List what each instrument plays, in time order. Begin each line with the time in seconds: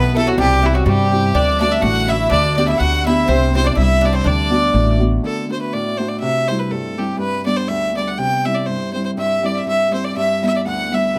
Already playing: upright bass B1, harp B2 A3 B3 D4 E4 G4, bouzouki B3, fiddle B4
0.15 bouzouki A3, harp B3 E4 G4, fiddle A4
0.27 bouzouki F#3, fiddle F#4
0.37 upright bass C2, harp C3, bouzouki G3, fiddle G4
0.62 bouzouki E3, harp C4 E4 G4, fiddle E4
0.72 bouzouki F#3, fiddle F#4 G4
0.76 fiddle F#4
0.85 upright bass G2, harp G3, bouzouki G3, fiddle G4
1.11 harp C4 E4 G4
1.34 upright bass D2, harp D3, bouzouki D4, fiddle D5
1.58 harp A3 D4 F#4, bouzouki D4, fiddle D5 E5
1.72 fiddle E5
1.81 upright bass A1, harp A3, bouzouki F#4, fiddle F#5
2.08 harp A3 D4, bouzouki E4, fiddle E5
2.12 harp F#4
2.30 upright bass D2, harp D3, bouzouki D4, fiddle D5
2.54 harp B3, bouzouki D4, fiddle D5
2.58 harp D4 G4
2.67 bouzouki E4, fiddle E5
2.78 upright bass D2, harp D3, bouzouki F#4, fiddle F#5
3.05 harp B3 D4 G4, bouzouki E4, fiddle E5
3.26 upright bass C2, bouzouki C4, fiddle C5
3.31 harp C3
3.54 harp C4 E4 G4, bouzouki C4, fiddle C5
3.64 bouzouki D4, fiddle D5
3.75 upright bass C2, harp G3, bouzouki E4, fiddle E5
4.01 harp C4 E4 G4, bouzouki D4, fiddle D5
4.13 bouzouki C4, fiddle C5
4.23 upright bass D2, harp D3, bouzouki D4, fiddle D5
4.27 fiddle D5
4.50 harp B3 D4 F#4
4.73 upright bass A1, harp A3
5.00 harp B3 D4 F#4
5.23 harp D3, fiddle A4
5.49 harp A3 D4 F#4, fiddle C5
5.61 fiddle B4
5.73 harp A2, fiddle D5
5.98 harp A3 D4 F#4, fiddle C5
6.08 fiddle D5
6.20 harp C3, fiddle E5
6.48 harp G3 C4 E4, fiddle C5
6.59 fiddle B4
6.71 harp G2, fiddle A4
6.98 harp G3 C4 E4, fiddle G4
7.19 harp G2, fiddle B4
7.46 harp G3 B3 D4, fiddle D5
7.56 fiddle C5
7.68 harp D2, fiddle E5
7.95 harp G3 B3 D4, fiddle D5
8.08 fiddle F#5
8.18 harp C3, fiddle G5
8.45 harp G3 C4 E4, fiddle E5
8.55 fiddle D5
8.66 harp G2, fiddle C5
8.93 harp G3 C4 E4, fiddle C5
9.05 fiddle C5
9.17 harp G2, fiddle E5
9.42 harp G3 C4 E4, fiddle D5
9.55 fiddle E5
9.66 harp G2, fiddle E5
9.91 harp G3 C4, fiddle C5
9.96 harp E4
10.04 fiddle D5
10.16 harp G2, fiddle E5
10.42 harp G3 B3 E4, fiddle E5
10.46 fiddle E5
10.56 fiddle D5
10.65 harp D2, fiddle F#5
10.92 harp G3 B3 E4, fiddle E5
11.16 harp C3, fiddle B4